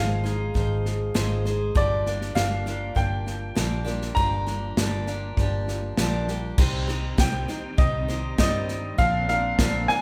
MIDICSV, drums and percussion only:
0, 0, Header, 1, 2, 480
1, 0, Start_track
1, 0, Tempo, 603015
1, 1396, Time_signature, 4, 2, 24, 8
1, 7973, End_track
2, 0, Start_track
2, 0, Title_t, "Drums"
2, 199, Note_on_c, 9, 38, 30
2, 279, Note_off_c, 9, 38, 0
2, 439, Note_on_c, 9, 36, 65
2, 439, Note_on_c, 9, 38, 30
2, 518, Note_off_c, 9, 38, 0
2, 519, Note_off_c, 9, 36, 0
2, 682, Note_on_c, 9, 38, 30
2, 761, Note_off_c, 9, 38, 0
2, 916, Note_on_c, 9, 38, 94
2, 996, Note_off_c, 9, 38, 0
2, 1160, Note_on_c, 9, 38, 27
2, 1239, Note_off_c, 9, 38, 0
2, 1397, Note_on_c, 9, 36, 96
2, 1398, Note_on_c, 9, 38, 28
2, 1477, Note_off_c, 9, 36, 0
2, 1478, Note_off_c, 9, 38, 0
2, 1643, Note_on_c, 9, 38, 29
2, 1723, Note_off_c, 9, 38, 0
2, 1762, Note_on_c, 9, 38, 30
2, 1842, Note_off_c, 9, 38, 0
2, 1882, Note_on_c, 9, 38, 97
2, 1962, Note_off_c, 9, 38, 0
2, 2118, Note_on_c, 9, 38, 31
2, 2197, Note_off_c, 9, 38, 0
2, 2357, Note_on_c, 9, 36, 68
2, 2357, Note_on_c, 9, 38, 30
2, 2436, Note_off_c, 9, 36, 0
2, 2437, Note_off_c, 9, 38, 0
2, 2601, Note_on_c, 9, 38, 31
2, 2681, Note_off_c, 9, 38, 0
2, 2838, Note_on_c, 9, 38, 94
2, 2917, Note_off_c, 9, 38, 0
2, 3077, Note_on_c, 9, 38, 29
2, 3156, Note_off_c, 9, 38, 0
2, 3197, Note_on_c, 9, 38, 28
2, 3277, Note_off_c, 9, 38, 0
2, 3317, Note_on_c, 9, 36, 93
2, 3318, Note_on_c, 9, 38, 30
2, 3397, Note_off_c, 9, 36, 0
2, 3398, Note_off_c, 9, 38, 0
2, 3557, Note_on_c, 9, 38, 29
2, 3637, Note_off_c, 9, 38, 0
2, 3799, Note_on_c, 9, 38, 111
2, 3879, Note_off_c, 9, 38, 0
2, 4036, Note_on_c, 9, 38, 30
2, 4116, Note_off_c, 9, 38, 0
2, 4274, Note_on_c, 9, 38, 34
2, 4277, Note_on_c, 9, 36, 75
2, 4354, Note_off_c, 9, 38, 0
2, 4356, Note_off_c, 9, 36, 0
2, 4522, Note_on_c, 9, 38, 35
2, 4601, Note_off_c, 9, 38, 0
2, 4756, Note_on_c, 9, 38, 96
2, 4836, Note_off_c, 9, 38, 0
2, 4998, Note_on_c, 9, 38, 29
2, 5078, Note_off_c, 9, 38, 0
2, 5236, Note_on_c, 9, 38, 32
2, 5236, Note_on_c, 9, 49, 93
2, 5238, Note_on_c, 9, 36, 102
2, 5316, Note_off_c, 9, 38, 0
2, 5316, Note_off_c, 9, 49, 0
2, 5318, Note_off_c, 9, 36, 0
2, 5478, Note_on_c, 9, 38, 31
2, 5558, Note_off_c, 9, 38, 0
2, 5717, Note_on_c, 9, 36, 84
2, 5718, Note_on_c, 9, 38, 99
2, 5797, Note_off_c, 9, 36, 0
2, 5798, Note_off_c, 9, 38, 0
2, 5955, Note_on_c, 9, 38, 31
2, 6035, Note_off_c, 9, 38, 0
2, 6191, Note_on_c, 9, 38, 31
2, 6195, Note_on_c, 9, 36, 102
2, 6271, Note_off_c, 9, 38, 0
2, 6275, Note_off_c, 9, 36, 0
2, 6437, Note_on_c, 9, 38, 34
2, 6517, Note_off_c, 9, 38, 0
2, 6674, Note_on_c, 9, 36, 83
2, 6674, Note_on_c, 9, 38, 105
2, 6754, Note_off_c, 9, 36, 0
2, 6754, Note_off_c, 9, 38, 0
2, 6912, Note_on_c, 9, 38, 30
2, 6992, Note_off_c, 9, 38, 0
2, 7152, Note_on_c, 9, 38, 29
2, 7153, Note_on_c, 9, 36, 93
2, 7232, Note_off_c, 9, 38, 0
2, 7233, Note_off_c, 9, 36, 0
2, 7390, Note_on_c, 9, 38, 33
2, 7470, Note_off_c, 9, 38, 0
2, 7631, Note_on_c, 9, 38, 110
2, 7632, Note_on_c, 9, 36, 85
2, 7711, Note_off_c, 9, 36, 0
2, 7711, Note_off_c, 9, 38, 0
2, 7871, Note_on_c, 9, 38, 35
2, 7950, Note_off_c, 9, 38, 0
2, 7973, End_track
0, 0, End_of_file